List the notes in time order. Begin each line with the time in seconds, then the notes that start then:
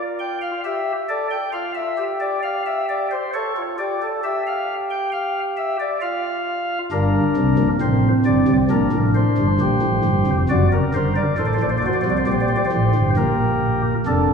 Already playing: F4
0.19 G5
0.42 F5
0.65 G4 E5
1.09 A4 D5
1.30 G5
1.53 F4 F5
1.75 E5
1.98 G4
2.20 D5
2.43 F5
2.66 E5
2.89 D5
3.11 C5
3.34 A4 C#5
3.57 F4
3.78 G4 D5
4.02 A4
4.24 G4 E5
4.47 F5
4.90 G5
5.12 F5
5.57 E5
5.80 D5
6.02 F4 F5
6.92 G1 G2 D4 A#4
7.36 C2 C3
7.58 A#1 A#2
7.81 A1 A2 C4 C5
8.25 G1 G2 D5
8.48 C2 C3
8.70 A#1 A#2 D4 A#4
8.92 A1 A2
9.15 C5
9.38 G1 G2
9.60 A#1 A#2 G4
9.82 A1 A2
10.04 G1 G2
10.27 F1 F2
10.49 F#1 F#2 F#4 D5
10.72 A#4
10.94 G1 G2 A#4 C5
11.16 D5
11.38 A1 A2 A4 C5
11.46 D5
11.54 C5
11.60 A#1 A#2 D5
11.70 C5
11.78 D5
11.83 F#4 C5
11.93 D5
12.01 C2 C5
12.05 C3
12.10 D5
12.17 C5
12.26 A#1 A#2 G4 D5
12.32 C5
12.40 D5
12.48 C5
12.56 D5
12.65 C5
12.72 A1 A2
12.95 G1 G2
13.17 A#1 A#2 A#4
14.06 F1 F2 D4 A4